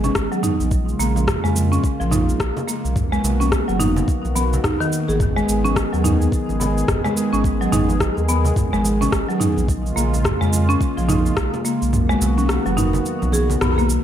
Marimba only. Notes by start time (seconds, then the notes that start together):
0.04 C#4
0.32 F#3
0.43 D#4
0.99 A#3
1.44 G#3
1.72 C#4
2.00 F3
2.12 D#4
2.68 A#3
3.12 G#3
3.40 C#4
3.68 F#3
3.80 D#4
4.36 B3
4.64 D#4
4.80 D#3
5.09 G#4
5.36 G#3
5.65 C#4
5.93 F#3
6.04 D#4
6.60 B3
7.04 G#3
7.33 C#4
7.61 F#3
7.72 D#4
8.29 B3
8.73 G#3
9.01 C#4
9.29 F#3
9.40 D#4
9.96 A#3
10.41 G#3
10.69 C#4
10.97 F3
11.09 D#4
11.65 A#3
12.09 G#3
12.38 C#4
12.66 F#3
12.77 D#4
13.33 G#4
13.61 B3
13.78 A#3